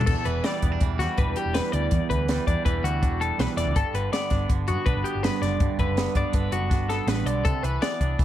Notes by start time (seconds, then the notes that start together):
Already playing: D3
0.01 floor tom
0.06 E1 E2 A4, kick, crash
0.25 E1 E3 B4, closed hi-hat
0.44 G3 D5, snare, closed hi-hat
0.62 E1 B3, kick, closed hi-hat
0.72 D4
0.81 E1 E3, kick, closed hi-hat
0.99 E2 G3 F#4, snare, closed hi-hat
1.18 G1 D4 B4, kick, closed hi-hat
1.27 E1
1.36 G3 G4, closed hi-hat
1.46 E1
1.54 E2 B4, snare, closed hi-hat
1.72 D2 E3 D5, closed hi-hat
1.91 E2, kick, closed hi-hat
2.10 D2 E3 B4, kick, closed hi-hat
2.28 G3, snare, closed hi-hat
2.47 E2 D4 D5, kick, closed hi-hat
2.65 E1 E3 B4, kick, closed hi-hat
2.83 D2 G3 F#4, closed hi-hat
3.02 E1 D4, kick, closed hi-hat
3.20 G3 A4, closed hi-hat
3.38 B1 E2 B4, snare, closed hi-hat
3.57 E1 E3 D5, snare, closed hi-hat
3.65 D2
3.75 G1 G2 A4, kick, closed hi-hat
3.94 G1 D3 B4, closed hi-hat
4.13 B3 D5, snare, closed hi-hat
4.30 G1 D4, kick, snare, closed hi-hat
4.49 G1 D3, kick, closed hi-hat
4.68 G2 B3 F#4, closed hi-hat
4.86 B1 D4 B4, kick, closed hi-hat
4.96 G1
5.04 B3 G4, closed hi-hat
5.15 G1
5.23 G2 B4, snare, closed hi-hat
5.42 F#1 D3 D5, snare, closed hi-hat
5.60 G2, kick, closed hi-hat
5.79 F#1 D3 B4, kick, closed hi-hat
5.97 B3, snare, closed hi-hat
6.15 G2 D4 D5, kick, closed hi-hat
6.33 G1 D3 B4, kick, closed hi-hat
6.52 F#1 B3 F#4, closed hi-hat
6.70 G1 D4, kick, snare, closed hi-hat
6.89 B3 A4, snare, closed hi-hat
7.07 A1 G2 B4, snare, closed hi-hat
7.25 B1 D3 D5, closed hi-hat
7.45 C2 C3 A4, kick, closed hi-hat
7.63 C2 E3 B4, closed hi-hat
7.82 B3 D5, snare, closed hi-hat
8.01 C2 D4, kick, closed hi-hat
8.19 C2 E3, kick, closed hi-hat